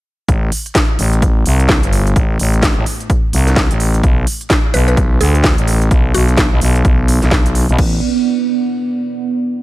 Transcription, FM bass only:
0.29 0.50 A1 loud
0.99 1.44 A1 loud
1.46 1.81 C2 loud
1.83 2.15 G1 loud
2.16 2.38 A1 loud
2.40 2.75 A1 loud
2.77 2.85 A1 loud
3.33 3.68 C2 loud
3.71 4.02 A1 medium
4.04 4.25 B1 loud
4.74 5.19 B1 loud
5.21 5.56 D2 loud
5.58 5.90 A1 loud
5.91 6.13 B1 loud
6.15 6.50 B1 loud
6.52 6.60 B1 loud
6.61 6.83 B1 loud
6.85 7.20 B1 loud
7.22 7.67 B1 loud
7.69 7.77 B1 loud
7.79 8.00 A1 loud

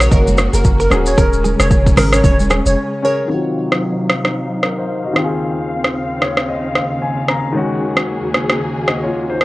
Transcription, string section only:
0.00 1.14 C#3 medium
0.00 1.16 A#3 medium
0.00 1.16 F#4 medium
1.18 3.28 C#3 medium
1.18 3.28 G#3 medium
1.18 3.28 C#4 medium
3.30 5.14 C3 medium
3.30 5.14 F#3 medium
3.30 5.14 D#4 medium
3.30 7.51 F5 medium
5.16 9.45 D#2 medium
5.16 9.45 C#3 medium
5.16 7.52 C4 medium
7.55 9.45 A#3 medium
7.55 9.45 F#4 medium
7.55 9.45 G#4 medium

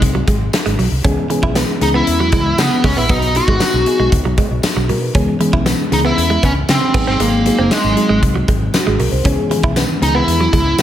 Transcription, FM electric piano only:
0.00 1.06 F#3 medium
0.00 1.04 G#3 medium
0.00 1.06 C4 medium
0.00 1.06 D#4 medium
0.00 1.05 G#4 medium
1.04 1.24 E3 medium
1.04 1.25 G#3 medium
1.04 1.25 B3 medium
1.04 1.25 C#4 medium
1.04 1.25 G#4 loud
1.29 1.70 E3 medium
1.29 1.70 G#3 medium
1.29 1.70 B3 medium
1.29 1.71 C#4 medium
1.29 1.71 G#4 loud
1.80 2.62 E3 medium
1.80 2.62 G#3 medium
1.80 2.62 B3 medium
1.80 2.62 C#4 medium
1.80 2.62 G#4 medium
3.09 3.30 B3 medium
3.09 3.30 D#4 medium
3.09 3.30 F#4 medium
3.35 3.75 B3 medium
3.35 3.76 D#4 medium
3.35 3.76 F#4 medium
3.86 4.67 B3 medium
3.86 4.67 D#4 medium
3.86 4.64 G#4 medium
4.77 4.89 F#4 medium
4.89 5.01 A#4 medium
5.02 5.26 B4 medium
5.14 5.34 E3 medium
5.14 5.34 G#3 medium
5.14 5.35 B3 medium
5.14 5.35 C#4 medium
5.14 5.35 G#4 loud
5.39 5.80 E3 medium
5.39 5.80 G#3 medium
5.39 5.81 B3 medium
5.39 5.81 C#4 medium
5.39 5.81 G#4 loud
5.91 6.72 E3 medium
5.91 6.72 G#3 medium
5.91 6.72 B3 medium
5.91 6.72 C#4 medium
5.91 6.72 G#4 medium
6.94 7.35 F#3 medium
6.94 7.35 G#3 medium
6.94 7.36 C4 medium
6.94 7.36 D#4 medium
6.94 7.36 G#4 medium
7.45 7.86 F#3 medium
7.45 7.86 G#3 medium
7.45 7.86 C4 medium
7.45 7.86 D#4 medium
7.45 7.87 G#4 medium
7.96 8.77 F#3 medium
7.96 8.77 G#3 medium
7.96 8.78 C4 medium
7.96 8.78 D#4 medium
7.96 8.74 G#4 medium
8.74 8.86 F#4 medium
8.87 8.99 G#4 medium
8.99 9.11 A#4 medium
9.11 9.36 C5 medium
9.23 9.44 E3 medium
9.23 9.45 G#3 medium
9.23 9.45 B3 medium
9.23 9.45 C#4 medium
9.23 9.45 G#4 loud
9.50 9.56 D#3 medium
9.50 9.91 G#3 medium
9.50 9.91 B3 medium
9.50 9.91 C#4 medium
9.50 9.91 G#4 loud
9.56 9.94 E3 medium
10.01 10.82 E3 medium
10.01 10.82 G#3 medium
10.01 10.82 B3 medium
10.01 10.82 C#4 medium
10.01 10.82 G#4 medium

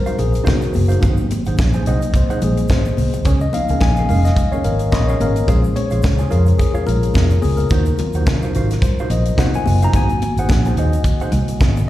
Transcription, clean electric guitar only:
0.06 0.17 D#4 medium
0.06 0.17 F#4 medium
0.06 0.17 C5 medium
0.06 0.18 F5 medium
0.18 muted clean electric guitar stroke soft
0.32 muted clean electric guitar stroke soft
0.44 0.64 D#4 medium
0.44 0.59 F#4 medium
0.44 0.59 C5 medium
0.44 0.58 F5 medium
0.59 muted clean electric guitar stroke soft
0.72 muted clean electric guitar stroke soft
0.88 0.99 D#4 medium
0.88 1.01 F#4 medium
0.88 1.01 C5 medium
0.88 1.01 F5 medium
1.01 1.23 D#4 medium
1.01 1.18 G#4 medium
1.01 1.17 C5 medium
1.01 1.17 F#5 medium
1.19 muted clean electric guitar stroke soft
1.31 muted clean electric guitar stroke soft
1.46 1.58 D#4 medium
1.46 1.58 G#4 soft
1.46 1.58 C5 soft
1.46 1.58 F#5 medium
1.74 1.86 D#4 soft
1.74 1.86 G#4 medium
1.74 1.86 C5 medium
1.74 1.86 G#5 medium
1.87 2.05 D#4 medium
1.87 2.02 G#4 medium
1.87 2.02 C5 loud
1.87 2.01 F#5 loud
2.02 muted clean electric guitar stroke soft
2.15 muted clean electric guitar stroke soft
2.30 2.41 D#4 medium
2.30 2.42 G#4 medium
2.30 2.41 C5 medium
2.30 2.42 F#5 medium
2.42 muted clean electric guitar stroke soft
2.58 muted clean electric guitar stroke soft
2.72 muted clean electric guitar stroke soft
2.86 muted clean electric guitar stroke soft
3.14 muted clean electric guitar stroke soft
3.26 3.44 C#4 medium
3.26 3.41 G#4 medium
3.26 3.41 A#4 medium
3.26 3.41 G#5 medium
3.42 muted clean electric guitar stroke soft
3.55 muted clean electric guitar stroke soft
3.71 3.80 C#4 medium
3.71 3.80 G#4 medium
3.71 3.81 A#4 medium
3.71 3.81 G#5 medium
3.99 4.08 C#4 soft
3.99 4.09 G#4 medium
3.99 4.09 A#4 medium
3.99 4.09 F5 medium
4.09 4.28 C#4 medium
4.09 4.26 G#4 medium
4.09 4.25 A#4 medium
4.09 4.25 F5 medium
4.26 muted clean electric guitar stroke soft
4.39 muted clean electric guitar stroke soft
4.52 4.64 C#4 medium
4.52 4.64 G#4 medium
4.52 4.65 A#4 medium
4.52 4.65 F5 medium
4.65 muted clean electric guitar stroke soft
4.80 muted clean electric guitar stroke soft
4.93 muted clean electric guitar stroke soft
5.10 5.19 C#4 medium
5.10 5.20 G#4 medium
5.10 5.20 A#4 medium
5.10 5.21 F5 medium
5.21 5.35 C#4 medium
5.21 5.36 G#4 medium
5.21 5.35 A#4 medium
5.21 5.35 F5 medium
5.36 muted clean electric guitar stroke soft
5.48 5.66 F4 medium
5.48 5.63 G#4 medium
5.48 5.63 C#5 loud
5.48 5.63 F5 loud
5.64 muted clean electric guitar stroke medium
5.76 muted clean electric guitar stroke soft
5.91 6.02 F4 soft
5.91 6.03 G#4 soft
5.91 6.03 C#5 medium
5.91 6.03 F5 medium
6.03 muted clean electric guitar stroke soft
6.19 6.29 F4 soft
6.19 6.29 G#4 medium
6.19 6.29 C#5 medium
6.19 6.31 G#5 medium
6.30 6.49 F4 medium
6.30 6.47 G#4 medium
6.30 6.46 C#5 medium
6.30 6.46 F5 medium
6.48 muted clean electric guitar stroke medium
6.60 muted clean electric guitar stroke soft
6.74 6.84 F4 medium
6.74 6.84 G#4 medium
6.74 6.85 C#5 loud
6.74 6.86 F5 medium
6.85 muted clean electric guitar stroke soft
7.02 muted clean electric guitar stroke soft
7.14 muted clean electric guitar stroke soft
7.29 muted clean electric guitar stroke soft
7.58 muted clean electric guitar stroke soft
7.71 7.90 D#4 medium
7.71 7.86 F#4 medium
7.71 7.86 C5 medium
7.71 7.85 F#5 loud
7.86 muted clean electric guitar stroke soft
7.98 muted clean electric guitar stroke soft
8.15 8.27 D#4 medium
8.15 8.27 F#4 medium
8.15 8.27 C5 medium
8.15 8.27 F#5 medium
8.43 8.54 D#4 medium
8.43 8.54 F#4 medium
8.43 8.54 C5 medium
8.43 8.55 F5 medium
8.56 8.73 D#4 medium
8.56 8.71 F#4 loud
8.56 8.71 C5 medium
8.56 8.70 F5 loud
8.71 muted clean electric guitar stroke soft
8.84 muted clean electric guitar stroke soft
9.00 9.11 D#4 medium
9.00 9.11 F#4 medium
9.00 9.11 C5 medium
9.00 9.12 F5 medium
9.12 muted clean electric guitar stroke soft
9.26 muted clean electric guitar stroke soft
9.38 9.56 D#4 medium
9.38 9.54 F#4 medium
9.38 9.54 C5 medium
9.38 9.53 F5 medium
9.54 muted clean electric guitar stroke medium
9.67 muted clean electric guitar stroke soft
9.82 9.92 D#4 medium
9.82 9.94 F#4 medium
9.82 9.94 C5 medium
9.82 9.94 F5 medium
9.94 10.12 D#4 medium
9.94 10.10 G#4 medium
9.94 10.09 C5 medium
9.94 10.09 F#5 loud
10.10 muted clean electric guitar stroke medium
10.22 muted clean electric guitar stroke soft
10.39 10.50 D#4 medium
10.39 10.50 G#4 medium
10.39 10.50 C5 medium
10.39 10.50 F#5 medium
10.66 10.76 D#4 medium
10.66 10.77 G#4 medium
10.66 10.77 C5 medium
10.66 10.77 G#5 medium
10.78 10.96 D#4 medium
10.78 10.94 G#4 medium
10.78 10.94 C5 medium
10.78 10.94 F#5 loud
10.95 muted clean electric guitar stroke medium
11.06 muted clean electric guitar stroke soft
11.21 11.32 D#4 medium
11.21 11.32 G#4 medium
11.21 11.33 C5 medium
11.21 11.33 F#5 loud
11.33 muted clean electric guitar stroke soft
11.49 muted clean electric guitar stroke soft
11.62 muted clean electric guitar stroke soft
11.77 muted clean electric guitar stroke soft

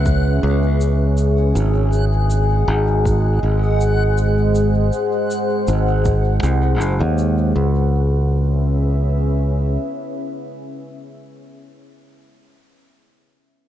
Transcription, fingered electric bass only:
0.00 0.40 C#2 medium
0.43 1.52 C#2 medium
1.55 2.65 G#1 medium
2.68 3.39 G#1 medium
3.43 4.90 G#1 medium
5.68 6.40 G#1 medium
6.43 6.81 C2 medium
6.81 7.02 F#1 medium
7.00 7.52 D#2 medium
7.56 9.77 C#2 medium

